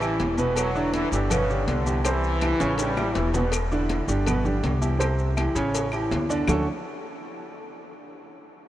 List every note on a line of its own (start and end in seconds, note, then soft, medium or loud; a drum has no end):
0.00 0.16 A1 loud
0.00 0.27 E3 loud
0.00 0.32 E3 medium
0.00 0.32 E4 medium
0.00 0.32 G4 medium
0.00 high conga soft
0.00 low agogo loud
0.00 claves medium
0.00 maracas soft
0.20 1.07 E1 loud
0.20 cowbell medium
0.20 high conga medium
0.20 low timbale medium
0.20 maracas soft
0.37 0.69 B2 medium
0.37 0.69 B3 medium
0.37 0.69 B4 loud
0.37 high conga medium
0.37 low agogo medium
0.37 maracas medium
0.56 0.91 F#3 loud
0.56 cowbell loud
0.56 high conga soft
0.56 low agogo loud
0.56 claves medium
0.56 maracas loud
0.75 1.06 D3 medium
0.75 1.06 D4 medium
0.75 1.06 E4 medium
0.75 high conga soft
0.75 maracas soft
0.93 1.10 E3 loud
0.93 cowbell medium
0.93 high conga medium
0.93 low timbale medium
0.93 low agogo medium
0.93 maracas soft
1.12 1.64 G1 loud
1.12 1.28 D3 medium
1.12 1.20 E3 medium
1.12 1.28 D4 medium
1.12 1.28 G4 medium
1.12 low agogo medium
1.12 maracas medium
1.30 1.46 B2 medium
1.30 1.65 C#3 loud
1.30 1.46 B3 medium
1.30 1.46 B4 medium
1.30 cowbell loud
1.30 high conga soft
1.30 low conga medium
1.30 low agogo loud
1.30 claves medium
1.30 maracas loud
1.49 1.80 D3 medium
1.49 1.80 D4 medium
1.49 1.80 G4 medium
1.49 high conga soft
1.49 maracas soft
1.67 2.54 C2 medium
1.67 2.02 D3 medium
1.67 cowbell medium
1.67 high conga medium
1.67 low timbale medium
1.67 low agogo medium
1.67 maracas soft
1.86 2.01 E3 medium
1.86 2.02 E4 medium
1.86 2.02 G4 medium
1.86 high conga medium
1.86 low agogo medium
1.86 maracas medium
2.04 2.35 C3 medium
2.04 2.78 E3 loud
2.04 2.35 C4 medium
2.04 2.36 C5 medium
2.04 cowbell loud
2.04 high conga soft
2.04 low agogo loud
2.04 claves medium
2.04 maracas loud
2.24 high conga soft
2.24 maracas soft
2.41 2.57 E3 medium
2.41 2.57 E4 medium
2.41 2.57 G4 medium
2.41 cowbell medium
2.41 high conga loud
2.41 high timbale medium
2.41 low agogo loud
2.41 claves medium
2.41 maracas soft
2.60 3.12 A1 loud
2.60 2.90 C#3 loud
2.60 2.90 C#4 medium
2.60 2.91 C#5 medium
2.60 cowbell medium
2.60 high bongo medium
2.60 high timbale medium
2.60 maracas medium
2.78 3.16 G3 loud
2.78 cowbell loud
2.78 high conga soft
2.78 high timbale loud
2.78 low agogo medium
2.78 maracas medium
2.97 3.28 E3 medium
2.97 3.28 E4 medium
2.97 3.28 G4 medium
2.97 low bongo medium
2.97 high conga soft
2.97 low timbale medium
2.97 low agogo loud
2.97 claves medium
2.97 maracas soft
3.15 4.02 E1 loud
3.15 3.34 E3 medium
3.15 cowbell medium
3.15 low bongo loud
3.15 high conga medium
3.15 maracas soft
3.34 3.49 B2 medium
3.34 3.42 C#3 medium
3.34 3.50 B3 medium
3.34 3.50 B4 medium
3.34 low bongo medium
3.34 high conga medium
3.34 low timbale medium
3.34 low agogo medium
3.34 maracas medium
3.52 cowbell loud
3.52 high conga soft
3.52 low agogo loud
3.52 claves medium
3.52 maracas loud
3.72 4.02 D3 medium
3.72 4.02 D4 medium
3.72 4.02 E4 medium
3.72 high conga soft
3.72 maracas soft
3.89 cowbell medium
3.89 high conga loud
3.89 low timbale medium
3.89 low agogo medium
3.89 maracas soft
4.08 4.59 G1 loud
4.08 4.23 D3 medium
4.08 4.23 D4 medium
4.08 4.24 G4 medium
4.08 low agogo medium
4.08 maracas medium
4.26 4.42 B2 medium
4.26 4.42 B3 medium
4.26 4.42 B4 medium
4.26 cowbell loud
4.26 high conga soft
4.26 low conga medium
4.26 low agogo loud
4.26 claves medium
4.26 maracas medium
4.44 4.75 D3 medium
4.44 4.75 D4 medium
4.44 4.75 G4 medium
4.44 high conga soft
4.44 low conga medium
4.44 maracas soft
4.63 5.50 C2 loud
4.63 cowbell medium
4.63 high conga medium
4.63 low timbale medium
4.63 low agogo medium
4.63 maracas soft
4.81 4.97 E3 medium
4.81 4.97 E4 medium
4.81 4.97 G4 medium
4.81 high conga medium
4.81 low agogo medium
4.81 maracas medium
4.99 5.30 C3 medium
4.99 5.30 C4 medium
4.99 5.30 C5 medium
4.99 cowbell loud
4.99 high conga soft
4.99 low agogo loud
4.99 claves medium
4.99 maracas medium
5.19 high conga soft
5.19 maracas soft
5.36 5.52 E3 medium
5.36 5.52 E4 medium
5.36 5.53 G4 medium
5.36 cowbell medium
5.36 high conga loud
5.36 low timbale medium
5.36 low agogo loud
5.36 claves medium
5.36 maracas soft
5.55 6.07 A1 loud
5.55 5.86 C#3 loud
5.55 5.86 C#4 medium
5.55 5.86 C#5 medium
5.55 cowbell medium
5.55 maracas medium
5.74 cowbell loud
5.74 high conga soft
5.74 low agogo medium
5.74 maracas loud
5.92 6.23 E3 medium
5.92 6.23 E4 medium
5.92 6.23 G4 medium
5.92 high conga soft
5.92 low agogo loud
5.92 claves medium
5.92 maracas soft
6.11 6.44 D2 loud
6.11 cowbell medium
6.11 high conga medium
6.11 low timbale medium
6.11 maracas soft
6.29 6.45 D3 medium
6.29 6.45 D4 medium
6.29 6.45 D5 medium
6.29 high conga medium
6.29 low agogo loud
6.29 maracas medium
6.47 6.65 D2 loud
6.47 6.66 D3 medium
6.47 6.66 A3 medium
6.47 6.66 C#4 medium
6.47 6.66 D4 medium
6.47 6.66 F#4 medium
6.47 6.66 A4 loud
6.47 low bongo loud
6.47 low conga loud
6.47 low timbale loud
6.47 claves loud
6.47 maracas loud